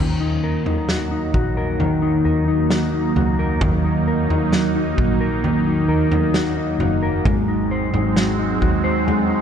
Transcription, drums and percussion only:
0.66 floor tom medium
0.89 snare medium
1.34 kick medium
1.34 floor tom medium
1.80 floor tom medium
2.70 snare loud
3.16 floor tom medium
3.61 kick loud
3.61 floor tom loud
4.30 floor tom medium
4.53 snare medium
4.98 kick medium
5.44 floor tom medium
6.12 floor tom medium
6.34 snare loud
6.80 floor tom medium
7.25 kick loud
7.25 floor tom loud
7.94 floor tom medium
8.17 snare loud
8.62 kick medium
9.08 floor tom medium

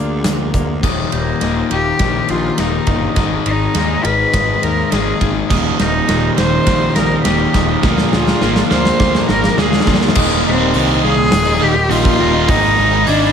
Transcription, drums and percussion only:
0.24 snare loud
0.24 closed hi-hat medium
0.54 kick medium
0.54 closed hi-hat medium
0.83 kick medium
0.83 snare soft
0.83 crash medium
1.12 ride medium
1.41 snare soft
1.41 ride medium
1.71 ride medium
1.99 kick medium
1.99 snare medium
1.99 ride medium
2.29 ride medium
2.58 snare medium
2.58 ride medium
2.87 kick medium
2.87 ride medium
3.16 kick medium
3.16 snare medium
3.16 ride medium
3.46 ride medium
3.75 snare medium
3.75 ride medium
4.05 ride medium
4.34 kick medium
4.34 snare medium
4.34 ride loud
4.63 ride medium
4.92 snare medium
4.92 ride medium
5.21 kick medium
5.21 ride medium
5.50 kick loud
5.50 snare medium
5.50 crash medium
5.79 snare medium
5.79 ride medium
6.09 snare medium
6.09 ride medium
6.38 snare medium
6.38 ride medium
6.67 kick medium
6.67 snare medium
6.67 ride medium
6.96 snare medium
6.96 ride medium
7.25 snare medium
7.25 ride medium
7.54 kick medium
7.54 snare medium
7.54 ride medium
7.83 kick loud
7.83 snare medium
7.98 snare medium
8.13 snare medium
8.27 snare medium
8.41 snare medium
8.56 snare loud
8.71 snare medium
8.85 snare loud
9.00 kick medium
9.00 snare loud
9.15 snare medium
9.29 snare medium
9.44 snare loud
9.58 snare loud
9.73 snare loud
9.80 snare loud
9.87 kick medium
9.87 snare loud
9.94 snare loud
10.01 snare loud
10.08 snare loud
10.15 kick loud
10.15 crash loud
10.74 open hi-hat medium
11.32 snare loud
11.32 open hi-hat medium
11.91 open hi-hat medium
12.05 kick medium
12.49 kick loud
12.49 open hi-hat medium
13.07 open hi-hat medium

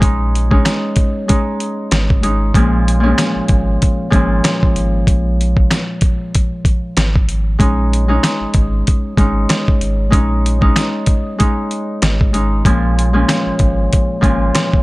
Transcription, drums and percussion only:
0.02 kick loud
0.02 closed hi-hat medium
0.35 closed hi-hat medium
0.51 kick medium
0.65 cross-stick medium
0.65 snare loud
0.65 closed hi-hat medium
0.96 kick loud
0.96 closed hi-hat medium
1.29 kick medium
1.29 closed hi-hat medium
1.60 closed hi-hat medium
1.91 cross-stick medium
1.91 snare loud
1.91 closed hi-hat medium
2.10 kick medium
2.23 closed hi-hat medium
2.54 kick loud
2.54 closed hi-hat medium
2.88 closed hi-hat medium
3.18 cross-stick medium
3.18 snare loud
3.18 closed hi-hat medium
3.48 kick medium
3.48 closed hi-hat medium
3.82 kick medium
3.82 closed hi-hat loud
4.12 kick loud
4.12 closed hi-hat medium
4.44 cross-stick medium
4.44 snare loud
4.44 closed hi-hat medium
4.63 kick medium
4.76 closed hi-hat medium
5.07 kick loud
5.07 closed hi-hat medium
5.41 closed hi-hat medium
5.57 kick loud
5.71 cross-stick medium
5.71 snare loud
5.71 closed hi-hat medium
6.01 kick loud
6.01 closed hi-hat medium
6.35 kick medium
6.35 closed hi-hat loud
6.65 kick loud
6.65 closed hi-hat medium
6.97 cross-stick medium
6.97 snare loud
6.97 closed hi-hat medium
7.16 kick medium
7.29 closed hi-hat medium
7.60 kick loud
7.60 closed hi-hat medium
7.93 closed hi-hat medium
8.23 cross-stick medium
8.23 snare loud
8.23 closed hi-hat medium
8.54 kick loud
8.54 closed hi-hat medium
8.87 kick medium
8.87 closed hi-hat medium
9.17 kick loud
9.17 closed hi-hat medium
9.49 cross-stick medium
9.49 snare loud
9.49 closed hi-hat medium
9.68 kick medium
9.81 closed hi-hat medium
10.12 kick loud
10.12 closed hi-hat medium
10.46 closed hi-hat medium
10.62 kick medium
10.76 cross-stick medium
10.76 snare loud
10.76 closed hi-hat medium
11.06 kick loud
11.06 closed hi-hat medium
11.40 kick medium
11.40 closed hi-hat medium
11.71 closed hi-hat medium
12.02 cross-stick medium
12.02 snare loud
12.02 closed hi-hat medium
12.21 kick medium
12.34 closed hi-hat medium
12.65 kick loud
12.65 closed hi-hat medium
12.99 closed hi-hat medium
13.29 cross-stick medium
13.29 snare loud
13.29 closed hi-hat medium
13.59 kick loud
13.59 closed hi-hat medium
13.93 kick medium
13.93 closed hi-hat medium
14.23 kick medium
14.23 closed hi-hat medium
14.55 cross-stick medium
14.55 snare loud
14.55 closed hi-hat medium
14.73 kick medium

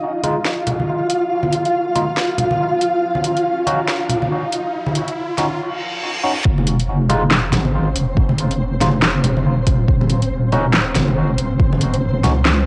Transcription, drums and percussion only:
0.23 closed hi-hat medium
0.23 high conga medium
0.45 snare loud
0.67 closed hi-hat medium
0.67 low conga medium
0.80 high conga medium
1.10 closed hi-hat medium
1.43 high conga medium
1.53 closed hi-hat medium
1.65 closed hi-hat soft
1.95 closed hi-hat medium
1.95 high conga medium
2.17 snare loud
2.38 closed hi-hat medium
2.38 low conga medium
2.51 high conga medium
2.81 closed hi-hat medium
3.15 high conga medium
3.24 closed hi-hat medium
3.37 closed hi-hat soft
3.67 closed hi-hat medium
3.67 high conga medium
3.88 snare loud
4.09 closed hi-hat medium
4.09 low conga medium
4.22 high conga medium
4.52 closed hi-hat medium
4.87 high conga loud
4.95 closed hi-hat medium
5.08 closed hi-hat soft
5.38 snare medium
5.38 closed hi-hat medium
5.38 high conga medium
6.45 kick loud
6.58 high conga medium
6.67 closed hi-hat medium
6.79 closed hi-hat soft
7.10 closed hi-hat medium
7.10 high conga medium
7.10 low conga loud
7.31 snare loud
7.31 clap medium
7.52 snare medium
7.52 closed hi-hat medium
7.52 low conga medium
7.65 high conga medium
7.96 closed hi-hat medium
8.17 kick loud
8.29 high conga medium
8.38 closed hi-hat medium
8.51 closed hi-hat soft
8.81 snare medium
8.81 closed hi-hat medium
8.81 high conga medium
8.81 low conga loud
9.02 snare loud
9.02 clap medium
9.24 closed hi-hat medium
9.24 low conga medium
9.37 high conga medium
9.67 kick loud
9.67 closed hi-hat medium
9.88 kick loud
10.01 high conga medium
10.10 closed hi-hat medium
10.22 closed hi-hat soft
10.52 closed hi-hat medium
10.52 high conga medium
10.52 low conga loud
10.74 snare loud
10.74 clap medium
10.95 snare medium
10.95 closed hi-hat medium
10.95 low conga medium
11.08 high conga medium
11.38 closed hi-hat medium
11.60 kick loud
11.73 high conga loud
11.81 closed hi-hat medium
11.94 closed hi-hat soft
12.24 snare medium
12.24 closed hi-hat medium
12.24 high conga medium
12.24 low conga medium
12.45 snare loud
12.45 clap medium

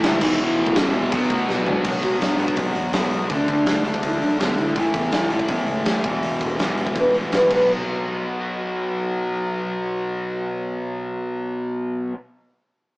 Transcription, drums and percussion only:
0.03 snare loud
0.03 open hi-hat medium
0.21 kick loud
0.21 crash loud
0.67 kick medium
0.75 snare loud
0.75 open hi-hat medium
1.12 kick loud
1.12 open hi-hat medium
1.30 kick medium
1.49 snare medium
1.66 floor tom loud
1.84 kick loud
1.84 crash loud
2.03 kick medium
2.03 open hi-hat medium
2.21 snare loud
2.21 open hi-hat medium
2.39 open hi-hat medium
2.48 kick medium
2.56 kick loud
2.56 open hi-hat medium
2.75 open hi-hat medium
2.93 snare loud
2.93 open hi-hat medium
3.11 open hi-hat medium
3.29 kick loud
3.29 open hi-hat medium
3.48 kick medium
3.48 open hi-hat medium
3.66 snare loud
3.66 open hi-hat medium
3.85 open hi-hat medium
3.94 kick medium
4.03 kick medium
4.03 open hi-hat medium
4.22 open hi-hat soft
4.40 snare loud
4.40 open hi-hat medium
4.58 open hi-hat medium
4.76 kick loud
4.76 open hi-hat medium
4.94 kick medium
4.94 open hi-hat medium
5.12 snare loud
5.12 open hi-hat medium
5.30 open hi-hat medium
5.39 kick medium
5.48 kick medium
5.48 open hi-hat medium
5.66 open hi-hat medium
5.85 snare loud
5.85 open hi-hat medium
6.04 kick loud
6.04 open hi-hat medium
6.23 open hi-hat medium
6.41 kick medium
6.41 open hi-hat medium
6.59 snare loud
6.59 open hi-hat medium
6.77 open hi-hat medium
6.87 kick medium
6.95 kick medium
6.95 open hi-hat medium
7.14 open hi-hat soft
7.32 snare loud
7.32 open hi-hat medium
7.51 kick medium
7.51 crash medium

